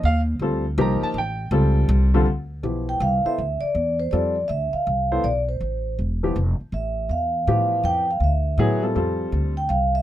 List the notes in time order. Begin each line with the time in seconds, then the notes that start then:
0.03 D#2 F5
0.39 D2 G3 C4 F4 A4
0.78 C2 F3 A#3 D#4 G4 A#5
1.02 A5, muted upright bass stroke
1.14 A1
1.18 G5
1.51 C#2 G3 C4 F4 A4
1.89 C2
2.14 D3 G3 C4 F4 A4
2.26 D2
2.63 B1 F3 B3 E4 G4
2.89 G5
3.00 C2 F5
3.25 B3 E4 A4 C5 E5, muted upright bass stroke
3.38 D2
3.61 D5, muted upright bass stroke
3.75 E2
4.00 C5
4.11 F2 G3 C4 F4 A4 D5
4.48 D2 E5
4.73 F5, muted upright bass stroke
4.87 C2
5.12 B3 E4 A4 C5
5.24 B1 D5
5.49 C5
5.61 A1
5.99 E1
6.23 F3 B3 E4 G4
6.36 F1
6.60 muted upright bass stroke
6.72 A1 E5
7.09 E2 F5
7.47 A2 E3 F3 B3 G4 F5
7.83 F2 G5
8.11 F5
8.20 D2 E5
8.58 A2 F#3 B3 E4 G#4
8.83 G3 C4 F4 A4
8.95 F2 G3 C4 F4 A4
9.32 D2
9.57 G5
9.69 C2 F5
9.95 E5